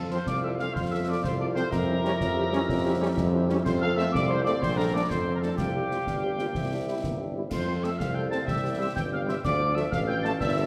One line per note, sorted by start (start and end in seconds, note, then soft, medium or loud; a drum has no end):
0.00 0.20 F2 medium
0.00 0.72 F4 medium
0.00 0.72 F5 medium
0.10 0.18 F3 medium
0.10 0.17 C4 medium
0.10 0.18 C4 medium
0.10 0.18 F4 medium
0.10 0.18 A4 medium
0.10 0.27 C5 loud
0.10 0.16 C6 medium
0.10 snare medium
0.27 0.67 C2 medium
0.27 0.35 D5 loud
0.27 0.42 D6 loud
0.27 concert bass drum medium
0.27 snare medium
0.43 0.49 C4 medium
0.43 0.49 F4 medium
0.43 0.49 A4 medium
0.43 0.51 E5 medium
0.43 0.49 E6 medium
0.59 0.66 F3 medium
0.59 0.65 C4 medium
0.59 0.66 C4 medium
0.59 0.66 F4 medium
0.59 0.66 A4 medium
0.59 0.74 F5 loud
0.59 0.74 F6 loud
0.59 snare medium
0.74 1.16 F2 loud
0.74 1.20 F4 medium
0.74 0.91 C5 loud
0.74 1.20 F5 medium
0.74 0.81 C6 loud
0.74 concert bass drum medium
0.74 snare medium
0.91 0.98 C4 medium
0.91 0.98 F4 medium
0.91 0.98 A4 medium
0.91 1.06 E5 loud
0.91 0.97 E6 loud
1.06 1.13 F3 medium
1.06 1.13 C4 medium
1.06 1.14 F4 medium
1.06 1.14 A4 medium
1.06 1.24 D5 loud
1.06 1.23 D6 medium
1.22 1.64 C2 loud
1.22 1.68 F4 medium
1.22 1.30 C5 loud
1.22 1.68 F5 medium
1.22 1.39 C6 loud
1.22 concert bass drum medium
1.22 snare medium
1.40 1.46 C4 medium
1.40 1.46 F4 medium
1.40 1.46 A4 medium
1.40 1.47 D5 loud
1.40 1.46 D6 loud
1.55 1.61 F3 loud
1.55 1.62 C4 loud
1.55 1.62 C4 medium
1.55 1.62 F4 medium
1.55 1.62 A4 medium
1.55 1.71 C5 loud
1.55 1.63 C6 loud
1.55 snare medium
1.71 2.12 F2 loud
1.71 3.60 G4 loud
1.71 3.44 A#4 loud
1.71 3.65 E5 loud
1.71 3.45 A#5 loud
1.71 concert bass drum medium
1.71 snare medium
1.71 crash soft
1.88 1.94 C#4 medium
1.88 1.94 E4 medium
1.88 1.94 G4 medium
2.04 2.10 G3 loud
2.04 2.10 C#4 loud
2.04 2.10 C#4 medium
2.04 2.10 E4 medium
2.04 2.10 G4 medium
2.04 snare medium
2.21 2.61 F2 loud
2.21 concert bass drum medium
2.21 snare medium
2.37 2.43 C#4 medium
2.37 2.43 E4 medium
2.37 2.43 G4 medium
2.51 2.57 G3 loud
2.51 2.58 C#4 loud
2.51 2.59 C#4 medium
2.51 2.59 E4 medium
2.51 2.59 G4 medium
2.51 snare medium
2.69 3.09 F2 loud
2.69 concert bass drum loud
2.69 snare medium
2.85 2.91 C#4 loud
2.85 2.91 E4 loud
2.85 2.91 G4 loud
3.00 3.06 G3 loud
3.00 3.06 C#4 loud
3.00 3.08 C#4 loud
3.00 3.07 E4 loud
3.00 3.07 G4 loud
3.17 3.58 F2 loud
3.17 concert bass drum medium
3.17 snare medium
3.33 3.39 C#4 loud
3.33 3.39 E4 loud
3.33 3.39 G4 medium
3.48 3.55 G3 loud
3.48 3.54 C#4 loud
3.48 3.56 C#4 loud
3.48 3.55 E4 loud
3.48 3.56 G4 loud
3.48 snare medium
3.64 4.06 F2 loud
3.64 4.57 A4 loud
3.64 3.73 C5 loud
3.64 4.57 F5 loud
3.64 3.71 C6 loud
3.64 concert bass drum medium
3.64 snare medium
3.64 crash soft
3.81 3.88 C4 loud
3.81 3.88 F4 loud
3.81 3.87 A4 loud
3.81 3.96 F5 loud
3.81 3.87 F6 loud
3.96 4.04 A3 loud
3.96 4.03 C4 loud
3.96 4.04 F4 medium
3.96 4.04 A4 medium
3.96 4.12 E5 loud
3.96 4.02 E6 loud
3.96 snare medium
4.12 4.54 C2 loud
4.12 4.29 D5 loud
4.12 4.27 D6 loud
4.12 concert bass drum medium
4.12 snare medium
4.28 4.36 C4 medium
4.28 4.36 F4 medium
4.28 4.36 A4 medium
4.28 4.46 C5 loud
4.28 4.34 C6 loud
4.44 4.52 A3 loud
4.44 4.52 C4 medium
4.44 4.53 C4 loud
4.44 4.52 F4 medium
4.44 4.52 A4 medium
4.44 4.60 D5 loud
4.44 4.50 D6 loud
4.44 snare medium
4.61 5.02 A#1 loud
4.61 5.55 A4 loud
4.61 4.78 C5 loud
4.61 5.55 D5 loud
4.61 4.76 C6 loud
4.61 concert bass drum loud
4.61 snare medium
4.77 4.84 D4 medium
4.77 4.84 F4 medium
4.77 4.84 A4 medium
4.77 4.93 A#4 loud
4.77 4.83 A#5 loud
4.93 5.00 A3 medium
4.93 5.00 D4 loud
4.93 5.00 D4 medium
4.93 5.00 F4 medium
4.93 5.00 A4 medium
4.93 5.10 D5 loud
4.93 5.08 D6 loud
5.09 5.51 F2 loud
5.09 5.34 C5 loud
5.09 5.32 C6 loud
5.09 concert bass drum medium
5.09 snare medium
5.26 5.32 D4 medium
5.26 5.32 F4 medium
5.26 5.32 A4 medium
5.34 5.39 A#4 loud
5.34 5.38 A#5 medium
5.42 5.50 A3 medium
5.42 5.48 D4 medium
5.42 5.49 D4 medium
5.42 5.48 F4 medium
5.42 5.57 A4 loud
5.42 5.48 A4 medium
5.42 5.49 A5 medium
5.42 snare medium
5.56 5.95 C2 loud
5.56 7.30 G4 loud
5.56 6.51 G4 medium
5.56 6.55 F5 medium
5.56 7.31 G5 medium
5.56 concert bass drum medium
5.56 snare medium
5.56 crash soft
5.75 5.81 C4 medium
5.75 5.81 F4 medium
5.75 5.81 G4 medium
5.91 5.98 G3 medium
5.91 5.97 C4 medium
5.91 5.97 F4 medium
5.91 5.98 F4 medium
5.91 5.97 G4 medium
5.91 snare medium
6.07 6.47 G1 medium
6.07 6.40 G3 medium
6.07 concert bass drum medium
6.07 snare medium
6.23 6.29 C4 medium
6.23 6.29 F4 medium
6.23 6.29 G4 medium
6.39 6.45 G3 medium
6.39 6.57 A#3 medium
6.39 6.45 C4 medium
6.39 6.46 F4 medium
6.39 6.45 F4 medium
6.39 6.45 G4 medium
6.39 snare medium
6.55 6.95 C2 medium
6.55 6.70 C4 medium
6.55 7.31 G4 medium
6.55 7.32 E5 medium
6.55 concert bass drum medium
6.55 snare medium
6.71 6.77 C4 medium
6.71 6.78 D4 medium
6.71 6.77 E4 medium
6.71 6.77 G4 medium
6.87 6.93 G3 medium
6.87 6.93 C4 medium
6.87 6.93 E4 medium
6.87 7.04 E4 medium
6.87 6.93 G4 medium
7.03 7.44 G1 medium
7.03 7.21 A#3 medium
7.03 concert bass drum medium
7.03 snare medium
7.19 7.25 C4 medium
7.19 7.36 D4 medium
7.19 7.24 E4 medium
7.19 7.25 G4 medium
7.34 7.42 G3 medium
7.34 7.51 C4 medium
7.34 7.42 C4 medium
7.34 7.41 E4 medium
7.34 7.42 G4 medium
7.50 7.91 F2 loud
7.50 7.95 A4 medium
7.50 7.82 C5 loud
7.50 7.96 F5 medium
7.50 7.85 C6 loud
7.50 concert bass drum medium
7.50 snare medium
7.50 crash medium
7.68 7.73 C4 medium
7.68 7.73 F4 medium
7.68 7.74 A4 medium
7.82 7.88 A3 medium
7.82 7.88 C4 medium
7.82 7.89 C4 medium
7.82 7.89 F4 medium
7.82 7.89 A4 medium
7.82 8.00 E5 loud
7.82 8.01 E6 loud
7.82 snare medium
7.98 8.40 C2 loud
7.98 8.44 A4 medium
7.98 8.44 F5 medium
7.98 8.15 F5 loud
7.98 8.16 F6 loud
7.98 concert bass drum medium
7.98 snare medium
8.14 8.21 C4 medium
8.14 8.21 F4 medium
8.14 8.21 A4 medium
8.14 8.21 G5 loud
8.14 8.30 G6 loud
8.29 8.39 A3 medium
8.29 8.37 C4 medium
8.29 8.39 C4 medium
8.29 8.37 F4 medium
8.29 8.37 A4 medium
8.29 8.37 A5 loud
8.29 8.46 A6 loud
8.29 snare medium
8.45 8.88 C2 loud
8.45 8.94 G4 medium
8.45 8.76 E5 loud
8.45 8.94 G5 medium
8.45 8.77 E6 loud
8.45 concert bass drum medium
8.45 snare medium
8.63 8.70 C4 medium
8.63 8.69 G4 medium
8.78 8.85 G3 loud
8.78 8.84 C4 medium
8.78 8.85 C4 medium
8.78 8.85 G4 medium
8.78 8.86 E5 loud
8.78 8.94 E6 loud
8.95 9.36 G1 loud
8.95 9.41 G4 medium
8.95 9.41 G5 medium
8.95 9.04 G5 loud
8.95 9.01 G6 loud
8.95 concert bass drum medium
8.95 snare medium
9.11 9.17 C4 medium
9.11 9.18 G4 medium
9.11 9.21 F5 loud
9.11 9.19 F6 loud
9.26 9.33 G3 medium
9.26 9.33 C4 medium
9.26 9.33 G4 medium
9.26 9.36 E5 loud
9.26 9.34 E6 loud
9.26 snare medium
9.44 9.85 D2 loud
9.44 9.92 A4 loud
9.44 9.74 D5 loud
9.44 9.91 F5 loud
9.44 9.76 D6 loud
9.44 concert bass drum medium
9.44 snare medium
9.44 crash soft
9.60 9.66 A3 medium
9.60 9.66 D4 medium
9.60 9.66 F4 medium
9.75 9.82 F3 loud
9.75 9.81 A3 loud
9.75 9.82 A3 medium
9.75 9.82 D4 medium
9.75 9.82 F4 medium
9.75 9.85 E5 loud
9.75 9.90 E6 loud
9.75 snare medium
9.91 10.32 A1 loud
9.91 10.38 A4 loud
9.91 10.38 F5 medium
9.91 10.00 F5 loud
9.91 9.97 F6 loud
9.91 concert bass drum medium
9.91 snare medium
10.06 10.14 A3 medium
10.06 10.14 D4 medium
10.06 10.14 F4 medium
10.06 10.23 G5 loud
10.06 10.22 G6 loud
10.22 10.31 F3 loud
10.22 10.30 A3 loud
10.22 10.30 A3 medium
10.22 10.30 D4 medium
10.22 10.30 F4 medium
10.22 10.32 A5 loud
10.22 10.28 A6 loud
10.22 snare medium
10.39 10.66 G1 loud
10.39 10.66 A#4 loud
10.39 10.66 D5 loud
10.39 10.66 E5 loud
10.39 10.66 E6 loud
10.39 concert bass drum medium
10.39 snare medium
10.57 10.63 A#3 loud
10.57 10.63 D4 medium
10.57 10.63 G4 medium